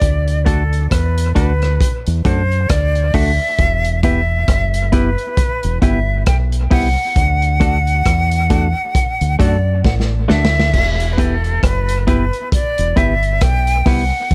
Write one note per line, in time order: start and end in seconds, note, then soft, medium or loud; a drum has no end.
0.00 0.87 D2 loud
0.00 0.46 D5 loud
0.00 kick loud
0.00 closed hi-hat medium
0.28 closed hi-hat soft
0.45 0.62 A3 medium
0.45 0.62 D4 medium
0.45 0.62 F#4 medium
0.45 0.89 A4 medium
0.45 0.63 A4 medium
0.45 kick medium
0.45 closed hi-hat medium
0.73 closed hi-hat soft
0.89 1.32 E2 medium
0.89 1.31 B4 medium
0.89 kick medium
0.89 cross-stick medium
0.89 closed hi-hat medium
1.18 closed hi-hat medium
1.35 1.77 D2 medium
1.35 1.51 A3 medium
1.35 1.52 D4 medium
1.35 1.52 F#4 medium
1.35 1.52 A4 medium
1.35 1.96 B4 medium
1.35 kick medium
1.35 closed hi-hat medium
1.62 cross-stick medium
1.62 closed hi-hat soft
1.81 kick loud
1.81 closed hi-hat medium
2.07 2.24 E2 medium
2.07 closed hi-hat medium
2.24 2.66 F#2 medium
2.24 2.41 A3 medium
2.24 2.41 D4 medium
2.24 2.41 F#4 medium
2.24 2.42 A4 medium
2.24 2.71 C5 medium
2.24 kick loud
2.24 closed hi-hat medium
2.52 closed hi-hat soft
2.69 3.11 D2 medium
2.69 3.16 D5 medium
2.69 kick loud
2.69 cross-stick loud
2.69 closed hi-hat medium
2.95 closed hi-hat soft
3.14 3.38 D2 medium
3.14 3.30 A3 medium
3.14 3.30 D4 medium
3.14 3.31 F#4 medium
3.14 3.31 A4 medium
3.14 4.02 E5 loud
3.14 kick medium
3.14 open hi-hat medium
3.59 4.44 E1 medium
3.59 kick loud
3.59 closed hi-hat medium
3.85 closed hi-hat soft
4.03 4.20 B3 medium
4.03 4.20 E4 medium
4.03 4.20 G4 loud
4.03 4.20 B4 medium
4.03 4.94 E5 medium
4.03 kick loud
4.03 closed hi-hat medium
4.48 5.15 F#1 loud
4.48 kick medium
4.48 cross-stick medium
4.48 closed hi-hat medium
4.74 closed hi-hat medium
4.92 5.09 B3 medium
4.92 5.09 E4 medium
4.92 5.09 G4 medium
4.92 5.81 B4 medium
4.92 5.09 B4 medium
4.92 kick medium
4.92 closed hi-hat medium
5.18 closed hi-hat soft
5.37 kick loud
5.37 closed hi-hat medium
5.63 5.81 E1 medium
5.63 closed hi-hat soft
5.82 6.24 G1 medium
5.82 5.98 B3 medium
5.82 5.98 E4 medium
5.82 5.99 G4 medium
5.82 5.99 B4 medium
5.82 6.23 E5 medium
5.82 kick medium
5.82 closed hi-hat medium
6.26 6.68 B1 medium
6.26 6.37 G5 medium
6.26 kick loud
6.26 cross-stick loud
6.26 closed hi-hat medium
6.52 closed hi-hat soft
6.71 6.95 C2 medium
6.71 6.87 B3 medium
6.71 6.88 E4 medium
6.71 6.88 G4 medium
6.71 6.88 B4 medium
6.71 9.36 F#5 loud
6.71 kick medium
6.71 open hi-hat medium
7.16 8.02 D2 loud
7.16 kick medium
7.16 closed hi-hat medium
7.42 closed hi-hat soft
7.60 7.77 A3 medium
7.60 7.77 D4 medium
7.60 7.77 F#4 medium
7.60 7.77 A4 medium
7.60 kick loud
7.60 closed hi-hat medium
7.87 closed hi-hat soft
8.06 8.72 E2 medium
8.06 kick medium
8.06 cross-stick medium
8.06 closed hi-hat medium
8.31 closed hi-hat medium
8.50 8.66 A3 medium
8.50 8.67 D4 medium
8.50 8.67 F#4 medium
8.50 8.67 A4 medium
8.50 kick medium
8.50 closed hi-hat medium
8.95 kick loud
8.95 closed hi-hat medium
9.21 9.38 D2 medium
9.21 closed hi-hat medium
9.39 9.81 F#2 medium
9.39 9.55 A3 medium
9.39 9.56 D4 medium
9.39 9.56 F#4 medium
9.39 9.56 A4 medium
9.39 9.81 D5 medium
9.39 kick loud
9.39 closed hi-hat medium
9.84 10.26 A1 medium
9.84 9.95 F#5 medium
9.84 kick loud
9.84 snare soft
10.00 snare soft
10.28 10.71 D2 medium
10.28 10.45 A3 medium
10.28 10.45 D4 medium
10.28 10.45 F#4 medium
10.28 10.45 A4 medium
10.28 11.14 E5 loud
10.28 snare medium
10.45 snare loud
10.60 snare medium
10.74 11.59 E1 loud
10.74 kick loud
10.74 crash medium
11.00 closed hi-hat soft
11.13 11.21 B4 medium
11.18 11.34 B3 medium
11.18 11.35 E4 medium
11.18 11.35 G4 medium
11.18 11.65 A4 medium
11.18 11.35 B4 medium
11.18 kick loud
11.18 closed hi-hat medium
11.44 closed hi-hat soft
11.63 12.30 F#1 medium
11.63 12.07 B4 loud
11.63 kick medium
11.63 cross-stick loud
11.63 closed hi-hat medium
11.89 closed hi-hat medium
12.07 12.24 B3 medium
12.07 12.24 E4 medium
12.07 12.24 G4 medium
12.07 12.49 B4 medium
12.07 12.24 B4 medium
12.07 kick medium
12.07 closed hi-hat medium
12.33 closed hi-hat soft
12.52 12.99 D5 loud
12.52 kick loud
12.52 closed hi-hat medium
12.78 12.96 E1 medium
12.78 closed hi-hat medium
12.96 13.39 G1 medium
12.96 13.13 B3 medium
12.96 13.13 E4 medium
12.96 13.13 G4 medium
12.96 13.14 B4 medium
12.96 13.44 E5 loud
12.96 kick loud
12.96 closed hi-hat medium
13.23 closed hi-hat soft
13.41 13.83 B1 medium
13.41 13.89 G5 loud
13.41 kick loud
13.41 cross-stick loud
13.41 closed hi-hat medium
13.67 closed hi-hat soft
13.86 14.11 C2 medium
13.86 14.02 B3 medium
13.86 14.03 E4 medium
13.86 14.03 G4 medium
13.86 14.03 B4 loud
13.86 14.35 F#5 loud
13.86 kick loud
13.86 cross-stick medium
13.86 open hi-hat medium
14.31 kick loud
14.31 closed hi-hat medium